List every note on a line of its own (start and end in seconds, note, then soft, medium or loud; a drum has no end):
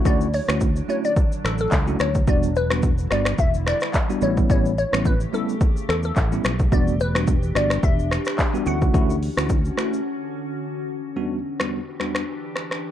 0.00 2.25 D3 medium
0.00 2.25 F#3 medium
0.00 2.25 D4 loud
0.05 0.39 D2 loud
0.05 0.26 A3 medium
0.05 0.26 C#4 medium
0.05 0.27 E4 medium
0.05 0.27 F#4 loud
0.05 0.34 D5 loud
0.05 kick loud
0.05 shaker medium
0.21 shaker medium
0.34 0.85 C#5 loud
0.34 open hi-hat medium
0.34 shaker medium
0.48 0.80 D2 medium
0.48 0.68 A3 medium
0.48 0.68 C#4 medium
0.48 0.68 E4 medium
0.48 0.68 F#4 medium
0.48 finger snap medium
0.48 cross-stick loud
0.48 shaker medium
0.61 kick loud
0.61 shaker medium
0.76 shaker medium
0.88 1.10 A3 medium
0.88 1.10 C#4 medium
0.88 1.10 E4 medium
0.88 1.10 F#4 medium
0.88 0.96 C#5 medium
0.88 shaker medium
1.05 1.46 D5 loud
1.05 shaker soft
1.16 kick loud
1.16 shaker medium
1.32 shaker medium
1.44 1.66 A1 medium
1.44 1.60 A4 medium
1.44 finger snap medium
1.44 cross-stick medium
1.44 shaker soft
1.58 2.02 A4 medium
1.58 shaker medium
1.72 1.94 C#2 loud
1.72 kick medium
1.72 clap medium
1.72 shaker medium
1.87 2.07 A3 medium
1.87 2.07 C#4 medium
1.87 2.07 E4 medium
1.87 2.07 F#4 medium
1.87 shaker medium
1.99 2.22 D2 medium
1.99 2.29 C#5 medium
1.99 finger snap medium
1.99 cross-stick loud
1.99 shaker medium
2.15 kick medium
2.15 shaker medium
2.27 3.07 E1 loud
2.27 4.20 D3 medium
2.27 2.49 G3 medium
2.27 4.20 G3 medium
2.27 2.49 B3 medium
2.27 2.49 D4 medium
2.27 4.20 E4 medium
2.27 2.49 F#4 loud
2.27 2.54 D5 loud
2.27 kick loud
2.27 shaker medium
2.43 shaker medium
2.56 3.13 B4 loud
2.56 shaker medium
2.70 2.90 G3 medium
2.70 2.90 B3 medium
2.70 2.90 D4 medium
2.70 2.90 F#4 medium
2.70 finger snap medium
2.70 cross-stick loud
2.70 shaker medium
2.83 kick loud
2.83 shaker medium
2.98 shaker medium
3.11 3.33 G1 medium
3.11 3.32 G3 medium
3.11 3.32 B3 medium
3.11 3.32 D4 medium
3.11 3.32 F#4 medium
3.11 3.40 D5 medium
3.11 finger snap medium
3.11 cross-stick medium
3.11 shaker medium
3.25 finger snap medium
3.25 cross-stick loud
3.25 shaker medium
3.38 3.72 E1 loud
3.38 3.52 E5 loud
3.38 kick loud
3.38 shaker medium
3.54 shaker medium
3.67 4.19 D5 loud
3.67 finger snap medium
3.67 cross-stick medium
3.67 shaker soft
3.80 finger snap medium
3.80 cross-stick medium
3.80 shaker medium
3.94 kick medium
3.94 clap medium
3.94 shaker medium
4.09 4.21 G3 medium
4.09 4.21 B3 medium
4.09 4.29 D4 medium
4.09 4.29 F#4 medium
4.09 shaker medium
4.22 4.44 A1 loud
4.22 6.70 C#3 medium
4.22 4.48 G3 medium
4.22 6.69 A3 medium
4.22 4.48 B3 medium
4.22 4.48 C#4 medium
4.22 4.48 E4 loud
4.22 6.70 G4 medium
4.22 4.48 C#5 loud
4.22 shaker medium
4.37 kick medium
4.37 shaker medium
4.50 4.83 A1 loud
4.50 4.71 G3 medium
4.50 4.71 B3 medium
4.50 4.71 C#4 medium
4.50 4.71 E4 loud
4.50 4.77 C#5 loud
4.50 kick loud
4.50 shaker medium
4.65 shaker medium
4.78 5.07 C#5 loud
4.78 shaker medium
4.93 5.24 A1 medium
4.93 5.12 G3 medium
4.93 5.13 B3 medium
4.93 5.13 C#4 medium
4.93 5.13 E4 medium
4.93 finger snap medium
4.93 cross-stick loud
4.93 shaker medium
5.05 5.19 B4 loud
5.05 kick loud
5.05 shaker medium
5.20 shaker soft
5.33 5.54 G3 medium
5.33 5.54 B3 medium
5.33 5.54 C#4 medium
5.33 5.54 E4 medium
5.33 5.85 A4 medium
5.33 shaker medium
5.49 shaker medium
5.61 kick loud
5.61 shaker medium
5.77 shaker medium
5.89 6.10 E2 medium
5.89 5.96 A4 medium
5.89 finger snap medium
5.89 cross-stick medium
5.89 shaker soft
6.03 6.75 A4 medium
6.03 shaker medium
6.16 6.38 A1 loud
6.16 kick medium
6.16 clap medium
6.16 shaker medium
6.32 6.51 G3 medium
6.32 6.51 B3 medium
6.32 6.52 C#4 medium
6.32 6.52 E4 medium
6.32 shaker medium
6.44 6.66 B1 loud
6.44 finger snap medium
6.44 cross-stick loud
6.44 shaker medium
6.59 kick medium
6.59 shaker medium
6.72 7.51 E1 loud
6.72 8.64 E3 medium
6.72 6.93 G3 medium
6.72 6.93 B3 medium
6.72 8.64 D4 medium
6.72 6.93 D4 medium
6.72 6.93 F#4 loud
6.72 8.64 G4 loud
6.72 7.01 D5 loud
6.72 kick loud
6.72 shaker medium
6.88 shaker medium
7.00 7.52 B4 loud
7.00 shaker medium
7.15 7.35 G3 medium
7.15 7.35 B3 medium
7.15 7.35 D4 medium
7.15 7.35 F#4 medium
7.15 finger snap medium
7.15 cross-stick loud
7.15 shaker medium
7.27 kick loud
7.27 shaker medium
7.43 shaker medium
7.55 7.77 G1 medium
7.55 7.76 G3 medium
7.55 7.76 B3 medium
7.55 7.77 D4 medium
7.55 7.77 F#4 medium
7.55 7.82 D5 loud
7.55 finger snap medium
7.55 cross-stick medium
7.55 shaker medium
7.70 finger snap medium
7.70 cross-stick loud
7.70 shaker soft
7.83 8.17 E1 loud
7.83 8.69 E5 loud
7.83 kick loud
7.83 shaker medium
7.99 shaker medium
8.11 finger snap medium
8.11 cross-stick loud
8.11 shaker soft
8.25 finger snap medium
8.25 cross-stick medium
8.25 shaker medium
8.38 kick medium
8.38 clap medium
8.38 shaker medium
8.54 8.74 G3 medium
8.54 8.74 B3 medium
8.54 8.74 D4 medium
8.54 8.66 F#4 medium
8.54 shaker medium
8.66 8.88 D2 medium
8.66 11.14 D3 medium
8.66 8.92 A3 loud
8.66 8.92 C#4 medium
8.66 11.14 C#4 medium
8.66 8.92 E4 medium
8.66 11.14 F#4 medium
8.66 8.92 F#4 loud
8.66 9.74 F#5 loud
8.66 shaker medium
8.82 kick medium
8.82 shaker medium
8.94 9.28 D2 loud
8.94 9.15 A3 medium
8.94 9.15 C#4 medium
8.94 9.15 E4 medium
8.94 9.15 F#4 loud
8.94 kick loud
8.94 shaker medium
9.10 shaker medium
9.23 open hi-hat medium
9.23 shaker soft
9.37 9.69 D2 medium
9.37 9.57 A3 medium
9.37 9.57 C#4 medium
9.37 9.57 E4 medium
9.37 9.57 F#4 medium
9.37 finger snap medium
9.37 cross-stick loud
9.37 shaker medium
9.49 kick loud
9.49 shaker medium
9.65 shaker medium
9.77 9.98 A3 medium
9.77 9.99 C#4 medium
9.77 9.99 E4 medium
9.77 9.99 F#4 medium
9.77 finger snap medium
9.77 cross-stick medium
9.77 shaker medium
9.93 shaker soft
11.16 11.37 E2 medium
11.16 12.91 E3 medium
11.16 11.38 G3 medium
11.16 11.38 B3 medium
11.16 12.91 D4 medium
11.16 11.38 D4 medium
11.16 11.38 F#4 medium
11.16 12.91 G4 medium
11.59 11.79 E2 medium
11.59 11.79 G3 medium
11.59 11.79 B3 medium
11.59 11.79 D4 medium
11.59 11.79 F#4 medium
11.59 finger snap medium
11.59 cross-stick loud
12.00 12.21 E2 medium
12.00 12.21 G3 medium
12.00 12.21 B3 medium
12.00 12.21 D4 medium
12.00 12.21 F#4 medium
12.00 finger snap medium
12.00 cross-stick medium
12.15 finger snap medium
12.15 cross-stick loud
12.56 finger snap medium
12.56 cross-stick medium
12.71 finger snap medium
12.71 cross-stick medium